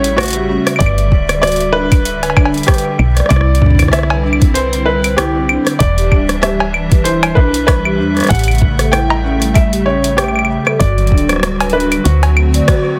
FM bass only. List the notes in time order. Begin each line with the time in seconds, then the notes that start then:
Already playing: A1
0.80 G1
1.12 D1
2.99 B1
3.30 C2
5.80 E1
6.12 D1
7.37 B1
7.99 E2
8.30 A1
10.80 G1
11.12 D1
12.05 D2